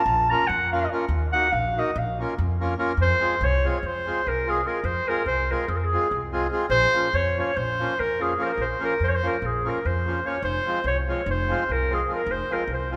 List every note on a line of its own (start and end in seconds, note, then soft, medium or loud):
0.00 0.31 A5 loud
0.06 0.32 A#1 loud
0.30 0.45 A#3 medium
0.30 0.45 C#4 medium
0.30 0.45 F4 medium
0.30 0.46 A#4 medium
0.30 0.49 A#5 loud
0.47 0.85 F2 loud
0.47 0.71 F#5 medium
0.72 0.86 A#3 medium
0.72 0.86 C#4 medium
0.72 0.86 F4 medium
0.72 0.87 A#4 medium
0.72 0.90 F5 medium
0.92 1.05 A#3 medium
0.92 1.05 C#4 medium
0.92 1.05 F4 medium
0.92 1.06 A#4 medium
1.08 1.35 D#2 loud
1.33 1.47 A#3 medium
1.33 1.47 D#4 medium
1.33 1.48 F#4 medium
1.33 1.48 A#4 medium
1.33 1.53 F#5 loud
1.52 1.78 A#1 medium
1.52 1.80 F5 medium
1.77 1.91 A#3 medium
1.77 1.91 D#4 medium
1.77 1.91 F#4 medium
1.77 1.91 A#4 medium
1.77 1.99 D#5 medium
1.96 2.21 A#1 loud
1.96 2.21 F5 medium
2.19 2.33 A#3 medium
2.19 2.34 C#4 medium
2.19 2.34 F4 medium
2.19 2.34 A#4 medium
2.38 2.74 F2 loud
2.60 2.74 A#3 medium
2.60 2.74 C#4 medium
2.60 2.74 F4 medium
2.60 2.74 A#4 medium
2.78 2.92 A#3 medium
2.78 2.92 C#4 medium
2.78 2.92 F4 medium
2.78 2.93 A#4 medium
2.97 3.12 F2 medium
3.02 3.46 C5 loud
3.20 3.34 G#3 medium
3.20 3.35 C4 medium
3.20 3.35 F4 medium
3.20 3.35 G#4 medium
3.41 3.66 C2 loud
3.41 3.66 C#5 loud
3.64 3.78 G#3 medium
3.64 3.78 C4 medium
3.64 3.78 F4 medium
3.64 3.79 G#4 medium
3.68 3.78 C#5 medium
3.79 3.87 C#5 medium
3.83 4.09 F2 medium
3.83 4.30 C5 loud
4.06 4.20 G#3 medium
4.06 4.21 C4 medium
4.06 4.21 F4 soft
4.06 4.21 G#4 medium
4.26 4.61 C2 medium
4.26 4.51 A#4 medium
4.46 4.61 G#3 medium
4.46 4.61 C4 medium
4.46 4.61 F4 medium
4.46 4.61 G#4 medium
4.46 4.68 G#4 medium
4.66 4.79 G#3 medium
4.66 4.79 C4 medium
4.66 4.80 F4 medium
4.66 4.80 G#4 medium
4.66 4.86 A#4 medium
4.84 4.98 F2 medium
4.84 5.09 C5 loud
5.07 5.22 G#3 medium
5.07 5.22 C4 medium
5.07 5.23 F4 medium
5.07 5.23 G#4 medium
5.07 5.26 A#4 medium
5.26 5.52 C2 medium
5.26 5.53 C5 loud
5.51 5.65 G#3 medium
5.51 5.65 C4 medium
5.51 5.65 F4 soft
5.51 5.65 G#4 medium
5.51 5.70 A#4 medium
5.68 5.95 F2 loud
5.68 5.78 G#4 medium
5.76 5.86 A#4 medium
5.84 6.18 G#4 loud
5.92 6.07 G#3 medium
5.92 6.07 C4 medium
5.92 6.08 F4 medium
5.92 6.08 G#4 medium
6.11 6.47 C2 medium
6.32 6.47 G#3 medium
6.32 6.47 C4 medium
6.32 6.47 F4 medium
6.32 6.48 G#4 medium
6.51 6.65 G#3 medium
6.51 6.66 C4 medium
6.51 6.66 F4 medium
6.51 6.66 G#4 medium
6.70 6.84 A#1 loud
6.70 7.16 C5 loud
6.94 7.08 F3 medium
6.94 7.08 A#3 medium
6.94 7.08 C#4 medium
6.94 7.09 F4 medium
7.13 7.39 F2 medium
7.13 7.38 C#5 loud
7.37 7.51 F3 medium
7.37 7.51 A#3 medium
7.37 7.51 C#4 medium
7.37 7.52 F4 medium
7.37 7.58 C#5 medium
7.57 7.82 A#1 loud
7.57 8.01 C5 loud
7.79 7.93 F3 medium
7.79 7.93 A#3 medium
7.79 7.94 C#4 medium
7.79 7.94 F4 medium
8.00 8.34 F2 medium
8.00 8.23 A#4 loud
8.19 8.33 F3 medium
8.19 8.33 A#3 medium
8.19 8.33 C#4 soft
8.19 8.34 F4 medium
8.19 8.44 G#4 medium
8.37 8.51 F3 medium
8.37 8.52 A#3 medium
8.37 8.52 C#4 medium
8.37 8.52 F4 medium
8.42 8.47 A#4 medium
8.42 8.53 C5 medium
8.52 8.63 A#4 loud
8.57 8.71 A#1 medium
8.57 8.86 C5 loud
8.79 8.93 F3 medium
8.79 8.94 A#3 medium
8.79 8.94 C#4 medium
8.79 8.95 F4 medium
8.84 9.05 A#4 medium
9.00 9.25 F2 medium
9.00 9.10 C5 loud
9.09 9.17 C#5 medium
9.15 9.28 C5 loud
9.23 9.37 F3 medium
9.23 9.36 A#3 medium
9.23 9.37 C#4 medium
9.23 9.37 F4 medium
9.23 9.47 A#4 medium
9.42 9.67 A#1 medium
9.42 9.70 G#4 medium
9.64 9.79 F3 soft
9.64 9.79 A#3 medium
9.64 9.79 C#4 medium
9.64 9.79 F4 medium
9.69 9.88 A#4 medium
9.85 10.19 F2 medium
9.85 10.28 C5 medium
10.06 10.19 F3 medium
10.06 10.19 A#3 medium
10.06 10.20 C#4 medium
10.06 10.20 F4 medium
10.25 10.37 F3 medium
10.25 10.38 A#3 medium
10.25 10.38 C#4 medium
10.25 10.38 F4 medium
10.25 10.43 C#5 medium
10.42 10.56 F1 loud
10.42 10.82 C5 loud
10.66 10.79 F3 medium
10.66 10.80 G#3 medium
10.66 10.80 C4 medium
10.66 10.80 F4 medium
10.84 11.09 C2 medium
10.84 10.97 C#5 medium
11.07 11.21 F3 medium
11.07 11.21 G#3 medium
11.07 11.22 C4 medium
11.07 11.22 F4 medium
11.07 11.26 C#5 medium
11.26 11.52 F1 loud
11.31 11.73 C5 medium
11.48 11.63 F3 medium
11.48 11.63 G#3 medium
11.48 11.63 C4 medium
11.48 11.64 F4 medium
11.69 12.03 C2 medium
11.69 11.95 A#4 medium
11.89 12.03 F3 medium
11.89 12.03 G#3 medium
11.89 12.03 C4 medium
11.89 12.04 F4 medium
11.94 12.10 G#4 medium
12.08 12.21 F3 medium
12.08 12.21 G#3 medium
12.08 12.22 C4 medium
12.08 12.22 F4 medium
12.14 12.33 A#4 medium
12.26 12.40 F1 medium
12.31 12.54 C5 loud
12.50 12.63 F3 medium
12.50 12.63 G#3 medium
12.50 12.63 C4 medium
12.50 12.64 F4 medium
12.50 12.70 A#4 medium
12.67 12.93 C2 medium
12.73 12.93 C5 medium
12.91 12.96 F3 medium
12.91 12.96 G#3 medium
12.91 12.96 C4 medium
12.91 12.96 F4 medium